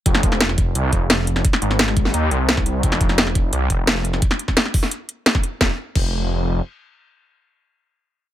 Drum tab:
CC |----------------|----------------|----------------|----------------|
HH |x-x-x-x-x-x-x-x-|x-x-x-x-x-x-x-x-|x-x-x-x-x-x-x-x-|x-x-x-o-x-x-x-x-|
SD |-o-ooo------o--o|-o-ooo-o----oo--|-o-ooo------o--o|-o-ooo-o----oo--|
BD |o-o---o---o-----|o-----o------o--|o-o---o---o-----|o--o--o------o--|

CC |----x-----------|----------------|
HH |----------------|----------------|
SD |o---------------|----------------|
BD |o---o-----------|----------------|